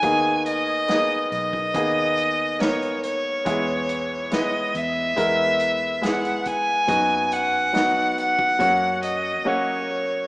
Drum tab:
HH |x-x-x-x-x-x-xxx-|x-x-x-x-x-x-xxx-|x-x-x-x-x-x-----|
SD |----o-------o---|----o-------o---|----o-----------|
BD |o------oo-------|o-------o-----o-|o------oo-------|